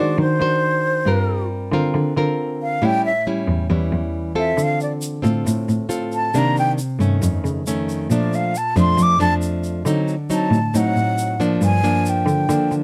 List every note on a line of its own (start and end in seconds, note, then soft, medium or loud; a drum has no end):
0.00 0.16 D#3 loud
0.00 0.17 G#3 medium
0.00 0.37 D4 medium
0.00 0.38 F#4 medium
0.00 0.38 C5 medium
0.00 0.18 D5 medium
0.18 0.39 D#3 loud
0.18 1.04 D#3 medium
0.18 1.48 C5 medium
0.40 1.02 D#3 medium
0.40 1.03 D4 medium
0.40 1.03 F#4 medium
0.40 1.04 C5 medium
1.06 1.68 G2 medium
1.06 1.92 G3 medium
1.06 1.69 C4 medium
1.06 1.69 F4 medium
1.06 1.70 A#4 medium
1.72 1.93 D3 loud
1.72 2.14 C4 medium
1.72 2.13 F4 medium
1.72 2.14 A#4 medium
1.94 2.15 D3 loud
1.94 2.81 D3 soft
2.17 2.79 D3 medium
2.17 2.81 C4 medium
2.17 2.81 F4 medium
2.17 2.81 A#4 medium
2.63 2.87 F5 medium
2.82 3.68 A2 medium
2.82 3.45 A2 medium
2.82 3.11 G3 medium
2.82 3.11 C#4 medium
2.82 3.11 E4 medium
2.82 3.05 G5 medium
3.06 3.26 E5 medium
3.27 3.67 G3 medium
3.27 3.67 C#4 medium
3.27 3.68 E4 medium
3.48 3.69 E2 medium
3.70 3.91 E2 loud
3.70 4.56 E3 medium
3.70 4.33 G3 soft
3.70 4.33 C#4 soft
3.70 4.33 E4 medium
3.92 4.54 E2 medium
4.35 5.21 C4 medium
4.35 5.20 F4 medium
4.35 5.21 A4 medium
4.35 4.64 E5 medium
4.57 5.44 D3 medium
4.57 5.20 D3 medium
4.57 shaker medium
4.63 4.82 F5 medium
4.80 4.93 D5 medium
4.80 shaker soft
5.02 shaker medium
5.22 5.45 A2 loud
5.22 5.86 C4 medium
5.22 5.86 F4 medium
5.22 5.86 A4 medium
5.22 shaker soft
5.45 6.31 A2 soft
5.45 5.67 A2 loud
5.45 shaker medium
5.69 6.31 A2 medium
5.69 shaker soft
5.89 6.30 C4 medium
5.89 6.30 F4 medium
5.89 6.30 A4 medium
5.89 shaker medium
6.12 6.40 A5 medium
6.12 shaker soft
6.34 7.20 C3 medium
6.34 6.96 C3 medium
6.34 6.78 D#3 medium
6.34 6.78 A#3 medium
6.34 6.78 D4 medium
6.34 shaker medium
6.38 6.58 A#5 medium
6.57 6.71 G5 medium
6.57 shaker soft
6.78 shaker medium
6.99 7.20 G2 medium
6.99 7.63 D#3 medium
6.99 7.63 A3 medium
6.99 7.63 C#4 medium
6.99 shaker soft
7.22 7.43 F2 loud
7.22 8.08 F2 soft
7.22 shaker medium
7.44 8.06 C#3 medium
7.44 shaker soft
7.67 8.07 D#3 medium
7.67 8.07 A3 medium
7.67 8.08 C#4 medium
7.67 shaker medium
7.89 shaker soft
8.10 8.72 A#2 medium
8.10 8.96 A#2 medium
8.10 8.54 F3 medium
8.10 8.55 A3 medium
8.10 8.55 D4 medium
8.10 shaker medium
8.14 8.37 D5 medium
8.33 8.59 F5 medium
8.33 shaker soft
8.55 8.78 A5 medium
8.55 shaker medium
8.76 8.97 F2 loud
8.76 9.17 F3 medium
8.76 9.17 A3 medium
8.76 9.17 D4 medium
8.76 9.04 C6 medium
8.76 shaker soft
8.98 9.19 F2 medium
8.98 9.84 F2 medium
8.98 shaker medium
9.02 9.21 D6 loud
9.19 9.83 F2 medium
9.19 9.84 F3 medium
9.19 9.84 A3 medium
9.19 9.84 D4 medium
9.19 9.34 A5 loud
9.19 shaker soft
9.42 shaker medium
9.64 shaker soft
9.85 10.48 D3 medium
9.85 10.72 D3 medium
9.85 10.14 F#3 medium
9.85 10.15 C4 medium
9.85 10.15 D#4 medium
9.85 shaker medium
10.08 shaker soft
10.30 10.58 F#3 medium
10.30 10.58 C4 medium
10.30 10.59 D#4 medium
10.30 10.78 A5 medium
10.30 shaker medium
10.51 10.72 A2 loud
10.51 shaker soft
10.74 11.60 A2 medium
10.74 10.95 A2 loud
10.74 11.37 F#3 soft
10.74 11.37 C4 soft
10.74 11.37 D#4 medium
10.74 11.42 F#5 medium
10.74 shaker medium
10.96 11.58 A2 medium
10.96 shaker soft
11.18 shaker medium
11.40 11.82 F3 medium
11.40 11.83 A#3 medium
11.40 11.83 D4 medium
11.40 shaker soft
11.62 12.24 G2 loud
11.62 12.48 G2 medium
11.62 12.11 G#5 medium
11.62 shaker medium
11.84 12.46 F3 medium
11.84 12.46 A#3 medium
11.84 12.47 D4 medium
11.84 shaker soft
12.06 12.74 G5 medium
12.06 shaker medium
12.26 12.48 D3 loud
12.26 shaker soft
12.49 12.84 D3 soft
12.49 12.70 D3 loud
12.49 12.84 F3 medium
12.49 12.84 A#3 soft
12.49 12.84 D4 medium
12.49 shaker medium
12.71 12.84 D3 medium
12.71 shaker soft